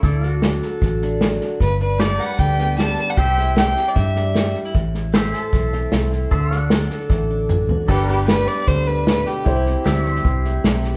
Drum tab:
CC |----------------|----------------|----------------|----------------|
HH |----p-------p---|----p-------p---|----p-------p---|----p-------p---|
SD |o-o-o-o-o-o-o-o-|o-o-o-o-o-o-o-o-|o-o-o-o-o-o-o-o-|o-o-o-o-o-o-o-o-|
T2 |----------------|----------------|----------------|----------------|
FT |----------------|----------------|----------------|----------------|
BD |o-------o-------|o-------o-------|o-------o-------|o-------o-------|

CC |----------------|x---------------|----------------|
HH |----p-------p---|----p-------p---|----p-------p---|
SD |o-o-o-ooo-------|o-o-o-o-o-o-o-o-|o-o-o-ooo-o-o-o-|
T2 |------------o---|----------------|----------------|
FT |--------------o-|----------------|----------------|
BD |o-------o-------|o-------o-------|o-------o-------|